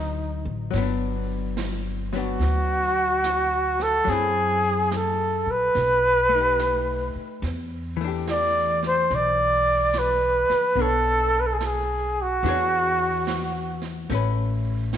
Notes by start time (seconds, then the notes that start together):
Already playing: D2 D3 F#3 C4 D#4
0.45 A1
0.71 G1 F#3, brush sweep, snare
0.77 B3
0.82 D4
1.57 snare, hi-hat pedal
2.12 F#3 B3 D4, snare
2.17 F#4
2.39 D2, brush sweep, snare
3.24 snare, hi-hat pedal
3.79 A4, snare
4.04 F#2 F#3, brush sweep, snare
4.09 C4 E4 G#4
4.91 A4, snare, hi-hat pedal
5.46 A#1
5.51 B4
5.75 B1, brush sweep, snare
6.29 A3
6.35 D#4
6.41 G4
6.59 snare, hi-hat pedal
7.15 muted upright bass stroke
7.42 E2, brush sweep, snare
7.97 E3
8.01 A3 D4
8.08 G4
8.27 D5, snare, hi-hat pedal
8.83 snare
8.87 C5
9.11 B1, brush sweep, snare
9.15 D5
9.93 snare, hi-hat pedal
9.98 B4
10.49 muted upright bass stroke, snare
10.75 B1 B3 D4, brush sweep
10.81 A4 C#5
11.40 B4
11.46 A4
11.53 G#4
11.58 A4, snare, hi-hat pedal
11.65 G#4
12.22 F#4
12.43 E2 E3 D4, brush sweep, snare
12.47 G#4 C#5
13.27 snare, hi-hat pedal
13.82 snare
14.10 A1 A3 C#4, brush sweep, snare
14.15 B4
14.93 snare, hi-hat pedal